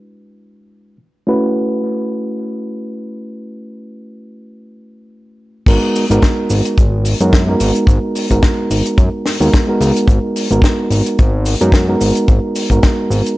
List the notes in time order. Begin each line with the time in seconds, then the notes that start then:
Already playing: G#3 D4 E4 F#4 B4
1.27 A3 C#4 E4 F#4 B4
5.66 G#1 G#3 B3 D#4 F#4 A#4, kick, closed hi-hat, crash, cabasa
5.96 open hi-hat, cabasa
6.10 G#1 G#3 B3 D#4 F#4 A#4, closed hi-hat, cabasa
6.22 kick, snare, closed hi-hat, cabasa
6.50 G#1, open hi-hat, cabasa
6.65 closed hi-hat, cabasa
6.78 G#1, kick, closed hi-hat, cabasa
7.05 open hi-hat, cabasa
7.20 F#2 G#3 B3 D#4 F#4 A#4, closed hi-hat, cabasa
7.33 kick, snare, closed hi-hat, cabasa
7.47 G#3 B3 D#4 F#4 A#4
7.60 G#1, open hi-hat, cabasa
7.75 closed hi-hat, cabasa
7.87 G#1, kick, closed hi-hat, cabasa
8.15 open hi-hat, cabasa
8.30 G#1 G#3 B3 D#4 F#4 A#4, kick, closed hi-hat, cabasa
8.43 kick, snare, closed hi-hat, cabasa
8.70 G#1, open hi-hat, cabasa
8.85 closed hi-hat, cabasa
8.98 F#2, kick, closed hi-hat, cabasa
9.26 snare, open hi-hat, cabasa
9.40 D#2 G#3 B3 D#4 F#4 A#4, open hi-hat, cabasa
9.53 kick, snare, closed hi-hat, cabasa
9.67 G#3 B3 D#4 F#4 A#4
9.80 C#2, open hi-hat, cabasa
9.96 closed hi-hat, cabasa
10.08 G#1, kick, closed hi-hat, cabasa
10.36 open hi-hat, cabasa
10.50 G#1 G#3 B3 D#4 F#4 A#4, closed hi-hat, cabasa
10.62 kick, snare, closed hi-hat, cabasa
10.90 G#1, open hi-hat, cabasa
11.06 closed hi-hat, cabasa
11.18 G#1, kick, closed hi-hat, cabasa
11.46 open hi-hat, cabasa
11.60 F#2 G#3 B3 D#4 F#4 A#4, closed hi-hat, cabasa
11.72 kick, snare, closed hi-hat, cabasa
11.88 G#3 B3 D#4 F#4 A#4
12.01 G#1, open hi-hat, cabasa
12.15 closed hi-hat, cabasa
12.28 G#1, kick, closed hi-hat, cabasa
12.55 open hi-hat, cabasa
12.70 G#1 G#3 B3 D#4 F#4 A#4, kick, closed hi-hat, cabasa
12.82 kick, snare, closed hi-hat, cabasa
13.10 G#1, open hi-hat, cabasa
13.26 closed hi-hat, cabasa